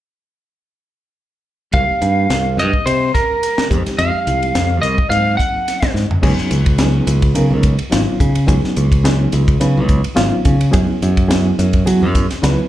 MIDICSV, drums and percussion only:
0, 0, Header, 1, 2, 480
1, 0, Start_track
1, 0, Tempo, 562324
1, 1480, Time_signature, 4, 2, 24, 8
1, 10827, End_track
2, 0, Start_track
2, 0, Title_t, "Drums"
2, 1474, Note_on_c, 9, 44, 54
2, 1474, Note_on_c, 9, 51, 52
2, 1482, Note_on_c, 9, 36, 71
2, 1559, Note_off_c, 9, 44, 0
2, 1559, Note_off_c, 9, 51, 0
2, 1567, Note_off_c, 9, 36, 0
2, 1721, Note_on_c, 9, 44, 61
2, 1721, Note_on_c, 9, 51, 45
2, 1807, Note_off_c, 9, 44, 0
2, 1807, Note_off_c, 9, 51, 0
2, 1966, Note_on_c, 9, 44, 57
2, 1966, Note_on_c, 9, 51, 58
2, 1967, Note_on_c, 9, 38, 73
2, 2051, Note_off_c, 9, 44, 0
2, 2051, Note_off_c, 9, 51, 0
2, 2053, Note_off_c, 9, 38, 0
2, 2213, Note_on_c, 9, 44, 69
2, 2213, Note_on_c, 9, 51, 53
2, 2298, Note_off_c, 9, 44, 0
2, 2298, Note_off_c, 9, 51, 0
2, 2334, Note_on_c, 9, 36, 57
2, 2419, Note_off_c, 9, 36, 0
2, 2449, Note_on_c, 9, 44, 66
2, 2449, Note_on_c, 9, 51, 70
2, 2535, Note_off_c, 9, 44, 0
2, 2535, Note_off_c, 9, 51, 0
2, 2687, Note_on_c, 9, 36, 65
2, 2690, Note_on_c, 9, 44, 66
2, 2690, Note_on_c, 9, 51, 52
2, 2691, Note_on_c, 9, 38, 23
2, 2772, Note_off_c, 9, 36, 0
2, 2775, Note_off_c, 9, 44, 0
2, 2775, Note_off_c, 9, 51, 0
2, 2777, Note_off_c, 9, 38, 0
2, 2928, Note_on_c, 9, 44, 66
2, 2928, Note_on_c, 9, 51, 73
2, 3013, Note_off_c, 9, 44, 0
2, 3013, Note_off_c, 9, 51, 0
2, 3057, Note_on_c, 9, 38, 87
2, 3142, Note_off_c, 9, 38, 0
2, 3166, Note_on_c, 9, 36, 78
2, 3170, Note_on_c, 9, 44, 71
2, 3170, Note_on_c, 9, 51, 50
2, 3251, Note_off_c, 9, 36, 0
2, 3255, Note_off_c, 9, 44, 0
2, 3255, Note_off_c, 9, 51, 0
2, 3299, Note_on_c, 9, 51, 55
2, 3300, Note_on_c, 9, 38, 30
2, 3384, Note_off_c, 9, 51, 0
2, 3386, Note_off_c, 9, 38, 0
2, 3403, Note_on_c, 9, 44, 61
2, 3403, Note_on_c, 9, 51, 62
2, 3488, Note_off_c, 9, 44, 0
2, 3488, Note_off_c, 9, 51, 0
2, 3645, Note_on_c, 9, 44, 64
2, 3645, Note_on_c, 9, 51, 47
2, 3730, Note_off_c, 9, 44, 0
2, 3730, Note_off_c, 9, 51, 0
2, 3778, Note_on_c, 9, 51, 46
2, 3863, Note_off_c, 9, 51, 0
2, 3885, Note_on_c, 9, 44, 66
2, 3885, Note_on_c, 9, 51, 66
2, 3887, Note_on_c, 9, 38, 81
2, 3971, Note_off_c, 9, 44, 0
2, 3971, Note_off_c, 9, 51, 0
2, 3972, Note_off_c, 9, 38, 0
2, 4122, Note_on_c, 9, 44, 75
2, 4122, Note_on_c, 9, 51, 51
2, 4207, Note_off_c, 9, 44, 0
2, 4207, Note_off_c, 9, 51, 0
2, 4252, Note_on_c, 9, 36, 68
2, 4338, Note_off_c, 9, 36, 0
2, 4366, Note_on_c, 9, 44, 59
2, 4366, Note_on_c, 9, 51, 68
2, 4451, Note_off_c, 9, 44, 0
2, 4451, Note_off_c, 9, 51, 0
2, 4605, Note_on_c, 9, 36, 60
2, 4610, Note_on_c, 9, 44, 72
2, 4610, Note_on_c, 9, 51, 49
2, 4690, Note_off_c, 9, 36, 0
2, 4695, Note_off_c, 9, 44, 0
2, 4695, Note_off_c, 9, 51, 0
2, 4848, Note_on_c, 9, 44, 68
2, 4848, Note_on_c, 9, 51, 67
2, 4849, Note_on_c, 9, 38, 27
2, 4933, Note_off_c, 9, 44, 0
2, 4933, Note_off_c, 9, 51, 0
2, 4935, Note_off_c, 9, 38, 0
2, 4972, Note_on_c, 9, 36, 66
2, 4973, Note_on_c, 9, 38, 100
2, 5058, Note_off_c, 9, 36, 0
2, 5058, Note_off_c, 9, 38, 0
2, 5089, Note_on_c, 9, 44, 62
2, 5091, Note_on_c, 9, 38, 41
2, 5175, Note_off_c, 9, 44, 0
2, 5176, Note_off_c, 9, 38, 0
2, 5214, Note_on_c, 9, 43, 66
2, 5300, Note_off_c, 9, 43, 0
2, 5319, Note_on_c, 9, 49, 80
2, 5320, Note_on_c, 9, 36, 85
2, 5404, Note_off_c, 9, 49, 0
2, 5406, Note_off_c, 9, 36, 0
2, 5447, Note_on_c, 9, 38, 26
2, 5533, Note_off_c, 9, 38, 0
2, 5555, Note_on_c, 9, 44, 73
2, 5555, Note_on_c, 9, 51, 56
2, 5640, Note_off_c, 9, 44, 0
2, 5640, Note_off_c, 9, 51, 0
2, 5685, Note_on_c, 9, 51, 61
2, 5688, Note_on_c, 9, 36, 78
2, 5771, Note_off_c, 9, 51, 0
2, 5773, Note_off_c, 9, 36, 0
2, 5791, Note_on_c, 9, 44, 74
2, 5791, Note_on_c, 9, 51, 76
2, 5793, Note_on_c, 9, 38, 83
2, 5877, Note_off_c, 9, 44, 0
2, 5877, Note_off_c, 9, 51, 0
2, 5878, Note_off_c, 9, 38, 0
2, 6037, Note_on_c, 9, 44, 87
2, 6037, Note_on_c, 9, 51, 63
2, 6122, Note_off_c, 9, 44, 0
2, 6122, Note_off_c, 9, 51, 0
2, 6166, Note_on_c, 9, 51, 54
2, 6167, Note_on_c, 9, 36, 75
2, 6251, Note_off_c, 9, 51, 0
2, 6252, Note_off_c, 9, 36, 0
2, 6276, Note_on_c, 9, 44, 75
2, 6276, Note_on_c, 9, 51, 75
2, 6362, Note_off_c, 9, 44, 0
2, 6362, Note_off_c, 9, 51, 0
2, 6513, Note_on_c, 9, 44, 75
2, 6513, Note_on_c, 9, 51, 58
2, 6517, Note_on_c, 9, 36, 76
2, 6598, Note_off_c, 9, 44, 0
2, 6598, Note_off_c, 9, 51, 0
2, 6603, Note_off_c, 9, 36, 0
2, 6647, Note_on_c, 9, 51, 58
2, 6732, Note_off_c, 9, 51, 0
2, 6762, Note_on_c, 9, 44, 77
2, 6762, Note_on_c, 9, 51, 83
2, 6764, Note_on_c, 9, 38, 99
2, 6848, Note_off_c, 9, 44, 0
2, 6848, Note_off_c, 9, 51, 0
2, 6850, Note_off_c, 9, 38, 0
2, 7001, Note_on_c, 9, 36, 69
2, 7004, Note_on_c, 9, 44, 77
2, 7004, Note_on_c, 9, 51, 53
2, 7087, Note_off_c, 9, 36, 0
2, 7089, Note_off_c, 9, 44, 0
2, 7089, Note_off_c, 9, 51, 0
2, 7131, Note_on_c, 9, 51, 66
2, 7216, Note_off_c, 9, 51, 0
2, 7241, Note_on_c, 9, 36, 88
2, 7244, Note_on_c, 9, 44, 75
2, 7244, Note_on_c, 9, 51, 71
2, 7326, Note_off_c, 9, 36, 0
2, 7329, Note_off_c, 9, 44, 0
2, 7329, Note_off_c, 9, 51, 0
2, 7378, Note_on_c, 9, 38, 28
2, 7463, Note_off_c, 9, 38, 0
2, 7482, Note_on_c, 9, 44, 74
2, 7482, Note_on_c, 9, 51, 48
2, 7567, Note_off_c, 9, 44, 0
2, 7567, Note_off_c, 9, 51, 0
2, 7611, Note_on_c, 9, 36, 67
2, 7616, Note_on_c, 9, 51, 55
2, 7697, Note_off_c, 9, 36, 0
2, 7701, Note_off_c, 9, 51, 0
2, 7725, Note_on_c, 9, 44, 79
2, 7725, Note_on_c, 9, 51, 67
2, 7727, Note_on_c, 9, 38, 105
2, 7811, Note_off_c, 9, 44, 0
2, 7811, Note_off_c, 9, 51, 0
2, 7812, Note_off_c, 9, 38, 0
2, 7959, Note_on_c, 9, 44, 86
2, 7959, Note_on_c, 9, 51, 58
2, 8044, Note_off_c, 9, 44, 0
2, 8044, Note_off_c, 9, 51, 0
2, 8092, Note_on_c, 9, 36, 83
2, 8096, Note_on_c, 9, 51, 55
2, 8177, Note_off_c, 9, 36, 0
2, 8182, Note_off_c, 9, 51, 0
2, 8201, Note_on_c, 9, 44, 79
2, 8201, Note_on_c, 9, 51, 73
2, 8287, Note_off_c, 9, 44, 0
2, 8287, Note_off_c, 9, 51, 0
2, 8439, Note_on_c, 9, 44, 72
2, 8439, Note_on_c, 9, 51, 50
2, 8442, Note_on_c, 9, 36, 75
2, 8524, Note_off_c, 9, 44, 0
2, 8524, Note_off_c, 9, 51, 0
2, 8528, Note_off_c, 9, 36, 0
2, 8572, Note_on_c, 9, 51, 57
2, 8658, Note_off_c, 9, 51, 0
2, 8677, Note_on_c, 9, 44, 72
2, 8677, Note_on_c, 9, 51, 71
2, 8679, Note_on_c, 9, 38, 99
2, 8763, Note_off_c, 9, 44, 0
2, 8763, Note_off_c, 9, 51, 0
2, 8764, Note_off_c, 9, 38, 0
2, 8920, Note_on_c, 9, 44, 74
2, 8920, Note_on_c, 9, 51, 56
2, 8924, Note_on_c, 9, 36, 83
2, 9005, Note_off_c, 9, 44, 0
2, 9005, Note_off_c, 9, 51, 0
2, 9009, Note_off_c, 9, 36, 0
2, 9054, Note_on_c, 9, 51, 59
2, 9139, Note_off_c, 9, 51, 0
2, 9162, Note_on_c, 9, 44, 77
2, 9162, Note_on_c, 9, 51, 66
2, 9166, Note_on_c, 9, 36, 92
2, 9247, Note_off_c, 9, 44, 0
2, 9247, Note_off_c, 9, 51, 0
2, 9252, Note_off_c, 9, 36, 0
2, 9410, Note_on_c, 9, 44, 73
2, 9410, Note_on_c, 9, 51, 53
2, 9495, Note_off_c, 9, 44, 0
2, 9495, Note_off_c, 9, 51, 0
2, 9537, Note_on_c, 9, 36, 75
2, 9537, Note_on_c, 9, 51, 59
2, 9623, Note_off_c, 9, 36, 0
2, 9623, Note_off_c, 9, 51, 0
2, 9651, Note_on_c, 9, 44, 72
2, 9651, Note_on_c, 9, 51, 72
2, 9653, Note_on_c, 9, 38, 103
2, 9736, Note_off_c, 9, 44, 0
2, 9736, Note_off_c, 9, 51, 0
2, 9738, Note_off_c, 9, 38, 0
2, 9894, Note_on_c, 9, 44, 86
2, 9894, Note_on_c, 9, 51, 54
2, 9979, Note_off_c, 9, 44, 0
2, 9979, Note_off_c, 9, 51, 0
2, 10014, Note_on_c, 9, 51, 59
2, 10019, Note_on_c, 9, 36, 76
2, 10100, Note_off_c, 9, 51, 0
2, 10104, Note_off_c, 9, 36, 0
2, 10133, Note_on_c, 9, 44, 84
2, 10133, Note_on_c, 9, 51, 79
2, 10218, Note_off_c, 9, 44, 0
2, 10218, Note_off_c, 9, 51, 0
2, 10371, Note_on_c, 9, 36, 72
2, 10372, Note_on_c, 9, 44, 71
2, 10372, Note_on_c, 9, 51, 64
2, 10456, Note_off_c, 9, 36, 0
2, 10457, Note_off_c, 9, 44, 0
2, 10457, Note_off_c, 9, 51, 0
2, 10504, Note_on_c, 9, 51, 57
2, 10506, Note_on_c, 9, 38, 33
2, 10589, Note_off_c, 9, 51, 0
2, 10591, Note_off_c, 9, 38, 0
2, 10616, Note_on_c, 9, 44, 79
2, 10616, Note_on_c, 9, 51, 73
2, 10617, Note_on_c, 9, 38, 92
2, 10701, Note_off_c, 9, 44, 0
2, 10701, Note_off_c, 9, 51, 0
2, 10703, Note_off_c, 9, 38, 0
2, 10827, End_track
0, 0, End_of_file